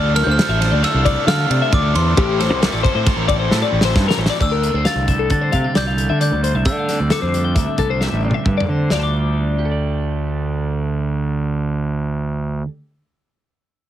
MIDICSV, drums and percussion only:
0, 0, Header, 1, 2, 480
1, 0, Start_track
1, 0, Key_signature, -1, "minor"
1, 0, Tempo, 448766
1, 2321, Time_signature, 5, 2, 24, 8
1, 14863, End_track
2, 0, Start_track
2, 0, Title_t, "Drums"
2, 172, Note_on_c, 9, 51, 82
2, 173, Note_on_c, 9, 38, 34
2, 279, Note_off_c, 9, 51, 0
2, 280, Note_off_c, 9, 38, 0
2, 417, Note_on_c, 9, 51, 112
2, 418, Note_on_c, 9, 38, 117
2, 524, Note_off_c, 9, 51, 0
2, 525, Note_off_c, 9, 38, 0
2, 660, Note_on_c, 9, 51, 82
2, 661, Note_on_c, 9, 38, 33
2, 767, Note_off_c, 9, 51, 0
2, 768, Note_off_c, 9, 38, 0
2, 897, Note_on_c, 9, 51, 112
2, 898, Note_on_c, 9, 38, 39
2, 1004, Note_off_c, 9, 51, 0
2, 1005, Note_off_c, 9, 38, 0
2, 1130, Note_on_c, 9, 36, 71
2, 1133, Note_on_c, 9, 51, 79
2, 1237, Note_off_c, 9, 36, 0
2, 1240, Note_off_c, 9, 51, 0
2, 1370, Note_on_c, 9, 51, 111
2, 1371, Note_on_c, 9, 38, 126
2, 1477, Note_off_c, 9, 51, 0
2, 1478, Note_off_c, 9, 38, 0
2, 1612, Note_on_c, 9, 51, 83
2, 1719, Note_off_c, 9, 51, 0
2, 1846, Note_on_c, 9, 36, 103
2, 1846, Note_on_c, 9, 51, 103
2, 1953, Note_off_c, 9, 36, 0
2, 1953, Note_off_c, 9, 51, 0
2, 2091, Note_on_c, 9, 51, 82
2, 2198, Note_off_c, 9, 51, 0
2, 2326, Note_on_c, 9, 36, 117
2, 2326, Note_on_c, 9, 51, 105
2, 2433, Note_off_c, 9, 36, 0
2, 2433, Note_off_c, 9, 51, 0
2, 2572, Note_on_c, 9, 51, 72
2, 2573, Note_on_c, 9, 38, 35
2, 2679, Note_off_c, 9, 51, 0
2, 2680, Note_off_c, 9, 38, 0
2, 2809, Note_on_c, 9, 51, 94
2, 2810, Note_on_c, 9, 38, 114
2, 2916, Note_off_c, 9, 51, 0
2, 2917, Note_off_c, 9, 38, 0
2, 3043, Note_on_c, 9, 36, 79
2, 3055, Note_on_c, 9, 51, 69
2, 3150, Note_off_c, 9, 36, 0
2, 3162, Note_off_c, 9, 51, 0
2, 3279, Note_on_c, 9, 36, 115
2, 3279, Note_on_c, 9, 51, 103
2, 3280, Note_on_c, 9, 38, 39
2, 3386, Note_off_c, 9, 36, 0
2, 3386, Note_off_c, 9, 51, 0
2, 3387, Note_off_c, 9, 38, 0
2, 3516, Note_on_c, 9, 36, 76
2, 3521, Note_on_c, 9, 51, 68
2, 3623, Note_off_c, 9, 36, 0
2, 3628, Note_off_c, 9, 51, 0
2, 3758, Note_on_c, 9, 38, 70
2, 3865, Note_off_c, 9, 38, 0
2, 4077, Note_on_c, 9, 38, 91
2, 4184, Note_off_c, 9, 38, 0
2, 4231, Note_on_c, 9, 38, 74
2, 4232, Note_on_c, 9, 36, 103
2, 4338, Note_off_c, 9, 38, 0
2, 4339, Note_off_c, 9, 36, 0
2, 4391, Note_on_c, 9, 38, 106
2, 4498, Note_off_c, 9, 38, 0
2, 4554, Note_on_c, 9, 38, 99
2, 4661, Note_off_c, 9, 38, 0
2, 4713, Note_on_c, 9, 36, 95
2, 4721, Note_on_c, 9, 49, 77
2, 4820, Note_off_c, 9, 36, 0
2, 4828, Note_off_c, 9, 49, 0
2, 4957, Note_on_c, 9, 42, 53
2, 5064, Note_off_c, 9, 42, 0
2, 5189, Note_on_c, 9, 42, 73
2, 5190, Note_on_c, 9, 38, 90
2, 5296, Note_off_c, 9, 42, 0
2, 5297, Note_off_c, 9, 38, 0
2, 5432, Note_on_c, 9, 42, 51
2, 5433, Note_on_c, 9, 36, 64
2, 5539, Note_off_c, 9, 42, 0
2, 5540, Note_off_c, 9, 36, 0
2, 5667, Note_on_c, 9, 42, 66
2, 5673, Note_on_c, 9, 36, 95
2, 5774, Note_off_c, 9, 42, 0
2, 5780, Note_off_c, 9, 36, 0
2, 5910, Note_on_c, 9, 42, 50
2, 5915, Note_on_c, 9, 36, 64
2, 6017, Note_off_c, 9, 42, 0
2, 6022, Note_off_c, 9, 36, 0
2, 6153, Note_on_c, 9, 42, 64
2, 6154, Note_on_c, 9, 38, 93
2, 6260, Note_off_c, 9, 42, 0
2, 6261, Note_off_c, 9, 38, 0
2, 6397, Note_on_c, 9, 42, 53
2, 6504, Note_off_c, 9, 42, 0
2, 6642, Note_on_c, 9, 42, 65
2, 6749, Note_off_c, 9, 42, 0
2, 6887, Note_on_c, 9, 42, 50
2, 6994, Note_off_c, 9, 42, 0
2, 7116, Note_on_c, 9, 42, 67
2, 7119, Note_on_c, 9, 36, 96
2, 7223, Note_off_c, 9, 42, 0
2, 7226, Note_off_c, 9, 36, 0
2, 7366, Note_on_c, 9, 42, 50
2, 7368, Note_on_c, 9, 38, 28
2, 7473, Note_off_c, 9, 42, 0
2, 7474, Note_off_c, 9, 38, 0
2, 7597, Note_on_c, 9, 42, 68
2, 7598, Note_on_c, 9, 38, 89
2, 7704, Note_off_c, 9, 42, 0
2, 7705, Note_off_c, 9, 38, 0
2, 7851, Note_on_c, 9, 42, 46
2, 7958, Note_off_c, 9, 42, 0
2, 8083, Note_on_c, 9, 42, 74
2, 8084, Note_on_c, 9, 36, 91
2, 8190, Note_off_c, 9, 42, 0
2, 8191, Note_off_c, 9, 36, 0
2, 8320, Note_on_c, 9, 42, 48
2, 8322, Note_on_c, 9, 36, 61
2, 8427, Note_off_c, 9, 42, 0
2, 8429, Note_off_c, 9, 36, 0
2, 8567, Note_on_c, 9, 38, 48
2, 8674, Note_off_c, 9, 38, 0
2, 8886, Note_on_c, 9, 48, 58
2, 8993, Note_off_c, 9, 48, 0
2, 9046, Note_on_c, 9, 36, 88
2, 9046, Note_on_c, 9, 47, 51
2, 9153, Note_off_c, 9, 36, 0
2, 9153, Note_off_c, 9, 47, 0
2, 9203, Note_on_c, 9, 45, 76
2, 9310, Note_off_c, 9, 45, 0
2, 9523, Note_on_c, 9, 38, 84
2, 9630, Note_off_c, 9, 38, 0
2, 14863, End_track
0, 0, End_of_file